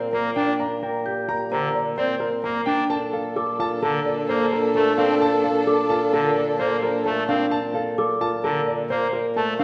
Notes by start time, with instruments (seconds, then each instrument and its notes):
Already playing: bassoon A#2, grand piano A#4
0.13 pipe organ A#3, clean electric guitar A#4, grand piano A#5
0.36 pipe organ D4, clean electric guitar D4, grand piano G5
0.60 grand piano A#5
0.83 clean electric guitar A#4, grand piano G5
1.06 grand piano G4, celesta G6
1.29 clean electric guitar G4, grand piano A#5
1.52 pipe organ D3, grand piano G4, clean electric guitar C5, celesta A#5
1.75 grand piano D5
1.98 pipe organ C4, grand piano C5, clean electric guitar D5
2.20 grand piano A#4
2.44 pipe organ A#3, clean electric guitar A#4, grand piano A#5
2.66 clean electric guitar D4, pipe organ D4, grand piano G5
2.90 bassoon A#2, violin section D4 A4, french horn A4, grand piano A5
3.13 clean electric guitar A4, grand piano F5
3.36 grand piano A4, celesta D6
3.59 clean electric guitar F4, grand piano A5
3.82 pipe organ D3, grand piano A4, clean electric guitar A#4, celesta A5
4.06 grand piano D5
4.29 pipe organ A#3, clean electric guitar C5, grand piano C5
4.53 grand piano A#4
4.75 pipe organ A3, clean electric guitar A4, grand piano A5
4.98 pipe organ C4, clean electric guitar D4, grand piano F5
5.22 grand piano A5
5.44 clean electric guitar A4, grand piano F5
5.67 grand piano A4, celesta D6
5.90 clean electric guitar F4, grand piano A5
6.13 pipe organ D3, grand piano A4, clean electric guitar A#4, celesta A5
6.36 grand piano D5
6.59 pipe organ A#3, clean electric guitar C5, grand piano C5
6.83 grand piano A#4
7.06 pipe organ A3, clean electric guitar A4, grand piano A5
7.29 pipe organ C4, clean electric guitar D4, grand piano F5
7.51 grand piano A5
7.75 clean electric guitar A4, grand piano F5
7.98 grand piano A4, celesta D6
8.21 clean electric guitar F4, grand piano A5
8.44 pipe organ D3, grand piano A4, clean electric guitar A#4, celesta A5
8.67 grand piano D5
8.90 pipe organ A#3, clean electric guitar C5, grand piano C5
9.13 grand piano A#4
9.36 pipe organ A3, clean electric guitar A4, grand piano A5
9.59 pipe organ C4, clean electric guitar D4, grand piano F5